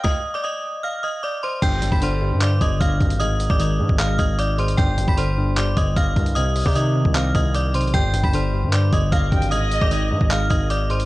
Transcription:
<<
  \new Staff \with { instrumentName = "Synth bell" } { \time 4/4 \key g \phrygian \tempo 4 = 152 <ees'' ees'''>8. <d'' d'''>16 <ees'' ees'''>4 <f'' f'''>8 <ees'' ees'''>8 <d'' d'''>8 <c'' c'''>8 | <g'' g'''>8. <b'' b'''>16 <c'' c'''>4 <d'' d'''>8 <ees'' ees'''>8 <f'' f'''>4 | <ees'' ees'''>8. <d'' d'''>16 <ees'' ees'''>4 <f'' f'''>8 <ees'' ees'''>8 <d'' d'''>8 <c'' c'''>8 | <g'' g'''>8. <b'' b'''>16 <c'' c'''>4 <d'' d'''>8 <ees'' ees'''>8 <f'' f'''>4 |
<ees'' ees'''>8. <d'' d'''>16 <ees'' ees'''>4 <f'' f'''>8 <ees'' ees'''>8 <d'' d'''>8 <c'' c'''>8 | <g'' g'''>8. <b'' b'''>16 <c'' c'''>4 <d'' d'''>8 <ees'' ees'''>8 <f'' f'''>4 | <ees'' ees'''>8. <d'' d'''>16 <ees'' ees'''>4 <f'' f'''>8 <ees'' ees'''>8 <d'' d'''>8 <c'' c'''>8 | }
  \new Staff \with { instrumentName = "Violin section" } { \time 4/4 \key g \phrygian r1 | r1 | r1 | r1 |
r1 | r2. f''8 g''8 | ees''2 r2 | }
  \new Staff \with { instrumentName = "Synth keys" } { \clef bass \time 4/4 \key g \phrygian r1 | g,8 g,8 d8 g,8 g,8 g,4 g,8 | aes,8 aes,8 ees8 aes,8 aes,8 aes,4 aes,8 | g,8 g,8 d8 g,8 g,8 g,4 g,8 |
c8 c8 ees8 c8 c8 c4 c8 | g,8 g,8 d8 g,8 g,8 g,4 g,8 | aes,8 aes,8 ees8 aes,8 aes,8 aes,4 aes,8 | }
  \new Staff \with { instrumentName = "808-style bass" } { \clef bass \time 4/4 \key g \phrygian r1 | g,,8 g,,16 g,,4 g,8. g,,8 g,,8 aes,,8~ | aes,,8. aes,,8. aes,16 aes,,8. aes,,4. | g,,8 g,,16 g,,4.~ g,,16 g,,8 g,,8 c,8~ |
c,8. c4 c,8. c,4 b,,8 | g,,8 g,,16 g,,4 g,8. g,,8 g,,8 aes,,8~ | aes,,8. aes,,8. aes,16 aes,,8. aes,,4. | }
  \new DrumStaff \with { instrumentName = "Drums" } \drummode { \time 4/4 <bd sn>4 r4 r4 r4 | <cymc hh bd>8 hh16 bd16 hh4 <hc hh>8 <hh bd>8 <hh bd>8 <hh bd>16 hh16 | hh8 hh16 bd16 hh8. bd16 <hc hh>8 <hh bd>8 hh8 hh16 hh16 | <hh bd>8 hh16 bd16 hh4 <hc hh>8 <hh bd>8 <hh bd>8 <hh bd>16 hh16 |
hh8 hho16 bd16 hh8. bd16 <hc hh>8 <hh bd>8 \tuplet 3/2 { hh16 r16 r16 hh16 hh16 hh16 } | <hh bd>8 hh16 bd16 hh4 <hc hh>8 <hh bd>8 <hh bd>8 <hh bd>16 hh16 | hh8 hh16 bd16 hh8. bd16 <hc hh>8 <hh bd>8 hh8 hh16 hh16 | }
>>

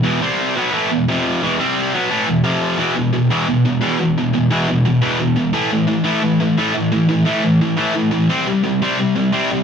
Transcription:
\new Staff \with { instrumentName = "Distorted electric guitar" } { \clef bass \time 4/4 \key e \minor \tempo 4 = 174 <e, b, e>8 <c g c'>4 <b, fis b>8 <a, e a>8 <e, b,>8 <f, c f>4 | <e, b, e>8 <c g c'>4 <b, fis b>8 <a, e a>8 <e, b,>8 <f, c f>4 | <e, b, e>8 <e, b,>8 <e, b,>8 <e, b, e>8 <e, b,>8 <e, b,>8 <e, b, e>8 <e, b,>8 | <e, b,>8 <e, b,>8 <e, b, e>8 <e, b,>8 <e, b,>8 <e, b, e>8 <e, b,>8 <e, b,>8 |
<a, e a>8 <a, e>8 <a, e>8 <a, e a>8 <a, e>8 <a, e>8 <a, e a>8 <a, e>8 | <a, e>8 <a, e>8 <a, e a>8 <a, e>8 <a, e>8 <a, e a>8 <a, e>8 <a, e>8 | <c g c'>8 <c g>8 <c g>8 <c g c'>8 <c g>8 <c g>8 <c g c'>8 <c g>8 | }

